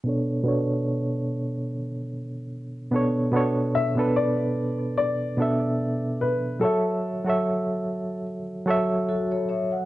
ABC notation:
X:1
M:4/4
L:1/16
Q:"Swing 16ths" 1/4=73
K:Bm
V:1 name="Upright piano"
z16 | z2 e2 d4 d6 B2 | A8 z8 |]
V:2 name="Vibraphone"
z16 | z16 | z12 [FA] [Ac] [ce] f |]
V:3 name="Reed electric piano"
[B,,B,DAc]2 [B,,B,DAc]6 z6 [B,,B,DAc]2 | [B,,B,DAc]2 z [B,,B,DAB]4- [B,,B,DAB] z2 [B,,B,DAe]4- [B,,B,DAe] z | [F,FAce]2 z [F,FAce]4- [F,FAce] z2 [F,FAce]4- [F,FAce] z |]